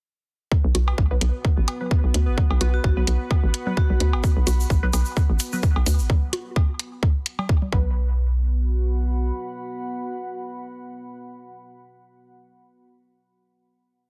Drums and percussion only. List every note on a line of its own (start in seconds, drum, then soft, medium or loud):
0.52 kick loud
0.75 closed hi-hat medium
0.75 low bongo medium
0.88 cowbell medium
0.98 kick loud
1.21 closed hi-hat medium
1.45 kick loud
1.68 closed hi-hat medium
1.68 cowbell medium
1.91 kick loud
2.14 closed hi-hat medium
2.38 kick loud
2.38 low conga medium
2.51 cowbell medium
2.61 closed hi-hat medium
2.61 low bongo medium
2.84 kick loud
3.07 closed hi-hat medium
3.31 kick loud
3.31 cowbell medium
3.54 closed hi-hat medium
3.67 low conga medium
3.77 kick loud
3.90 low conga medium
4.00 closed hi-hat medium
4.13 cowbell medium
4.24 kick loud
4.24 shaker soft
4.47 closed hi-hat medium
4.47 low bongo medium
4.47 shaker loud
4.60 shaker medium
4.70 kick loud
4.70 shaker soft
4.93 closed hi-hat medium
4.93 cowbell medium
4.93 shaker loud
5.05 shaker medium
5.16 kick loud
5.16 shaker soft
5.39 closed hi-hat medium
5.39 shaker loud
5.52 shaker medium
5.63 kick loud
5.63 shaker soft
5.76 cowbell medium
5.86 closed hi-hat medium
5.86 shaker medium
5.99 shaker medium
6.10 kick loud
6.10 low conga medium
6.33 closed hi-hat medium
6.33 low bongo medium
6.56 kick loud
6.56 cowbell medium
6.79 closed hi-hat loud
7.03 kick loud
7.26 closed hi-hat loud
7.39 cowbell medium
7.39 low conga medium
7.49 kick loud
7.62 low conga medium
7.72 kick loud